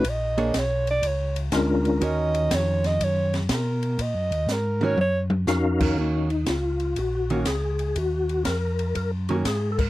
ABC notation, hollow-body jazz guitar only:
X:1
M:4/4
L:1/8
Q:"Swing" 1/4=121
K:Ebm
V:1 name="Hollow-body jazz guitar"
z [B,=DA^c] z6 | [E,DGB]4- [E,DGB] z3 | z3 [E,DGB] z3 [E,DGB] | [E,B,DG] z4 [E,B,DG] z2 |
z4 z [E,B,DG] z2 |]